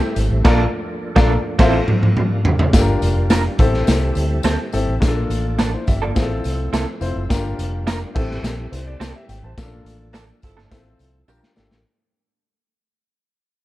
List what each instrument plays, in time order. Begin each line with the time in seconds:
Already playing: tonewheel organ G3 A3 C4 E4, grand piano E4 G4 A4 C5 E5
0.16 fingered electric bass G#1, closed hi-hat, tambourine
0.31 fingered electric bass A1
0.44 fingered electric bass A#1, tonewheel organ F3 A#3 D4, clean electric guitar A#3 D4 A4, grand piano F4 A4 A#4 D5 F5, kick, snare, crash
1.16 fingered electric bass A#1, clean electric guitar A#3 D4 A4, grand piano F4 A4 A#4 D5 F5, kick, snare
1.59 fingered electric bass A1, tonewheel organ A3 C4 E4, clean electric guitar C4 E4 A4, grand piano F4 A4 C5 E5 F5, kick, snare, crash
1.88 mid tom
2.03 mid tom
2.17 tonewheel organ G3 A#3 D4 F4, mid tom
2.45 floor tom
2.59 floor tom
2.73 fingered electric bass G1, tonewheel organ G3 A#3 D4 F4, grand piano D4 F4 G4 A4, kick, snare, closed hi-hat, tambourine
2.81 grand piano A#4
3.02 fingered electric bass F1, closed hi-hat, tambourine
3.30 clean electric guitar D4 F4 A#4, snare, closed hi-hat, tambourine
3.58 fingered electric bass A1, tonewheel organ C4 E4 A4, grand piano C4 E4 G4 A4, kick, closed hi-hat, tambourine
3.74 snare
3.87 fingered electric bass C2, snare, closed hi-hat, tambourine
4.15 fingered electric bass D2, closed hi-hat, tambourine
4.43 fingered electric bass D2, clean electric guitar C4 G4 A4, snare, closed hi-hat, tambourine
4.72 fingered electric bass G#1, grand piano C4 E4 G4 A4, closed hi-hat, tambourine
4.88 fingered electric bass A1
5.00 fingered electric bass A#1, tonewheel organ F3 A#3 D4, grand piano A#3 D4 F4 G#4, kick, snare, closed hi-hat, tambourine
5.08 grand piano A4
5.30 fingered electric bass A1, closed hi-hat, tambourine
5.59 clean electric guitar A#3 D4 A4, snare, closed hi-hat, tambourine
5.74 grand piano E4 C5
5.87 fingered electric bass G1, grand piano G4 E5, kick, closed hi-hat, tambourine
6.02 clean electric guitar A#3 D4 A4, grand piano F4 D5
6.15 fingered electric bass A1, tonewheel organ F3 A3 C4 E5, grand piano C4 E4 F4 G#4, kick, snare, closed hi-hat, tambourine
6.22 grand piano A4
6.44 fingered electric bass C2, closed hi-hat, tambourine
6.73 fingered electric bass C2, clean electric guitar C4 E4 A4, snare, closed hi-hat, tambourine
7.00 fingered electric bass F1, grand piano C4 E4 F4 C5, closed hi-hat, tambourine
7.16 fingered electric bass F#1
7.29 fingered electric bass G1, tonewheel organ G3 A#3 D4 F4, grand piano D4 F4 G4 A#4, kick, snare, closed hi-hat, tambourine
7.59 fingered electric bass F1, closed hi-hat, tambourine
7.87 clean electric guitar D4 F4 A#4, snare, closed hi-hat, tambourine
8.15 fingered electric bass A1, grand piano C4 E4 G4 A4, tonewheel organ C4 E4 A4, kick, tambourine, crash
8.31 snare
8.43 fingered electric bass A#1, snare, closed hi-hat, tambourine
8.72 fingered electric bass C2, grand piano E4 C5, closed hi-hat, tambourine
8.87 grand piano D5
9.00 fingered electric bass C2, clean electric guitar C4 G4 A4, snare, closed hi-hat, tambourine
9.16 grand piano G4 E5
9.29 fingered electric bass G#1, grand piano G5, closed hi-hat, tambourine
9.43 fingered electric bass A1, grand piano C5 A5
9.58 fingered electric bass A#1, tonewheel organ F3 A#3 D4, grand piano A#3 C#4 F4 A4, kick, snare, closed hi-hat, tambourine
9.64 grand piano D4
9.85 fingered electric bass A1, closed hi-hat, tambourine
10.13 horn section F3 D4 A4, clean electric guitar A#3 D4 A4, snare, closed hi-hat, tambourine
10.42 fingered electric bass G1, horn section F3 E4 A4, kick, closed hi-hat, tambourine
10.57 clean electric guitar A#3 D4 A4, snare
10.71 fingered electric bass A1, tonewheel organ F3 C4 E5, grand piano C4 E4 F4 A4, kick, snare, closed hi-hat, tambourine
10.99 fingered electric bass C2, closed hi-hat, tambourine
11.28 fingered electric bass A#1, tonewheel organ G3 A#3 D4 F4, grand piano D4 F4 G4 A#4, clean electric guitar D4 G4 A#4, tambourine
11.43 snare
11.56 fingered electric bass G#1, grand piano D4 F4 G4 A4, snare, tambourine
11.71 fingered electric bass A1, snare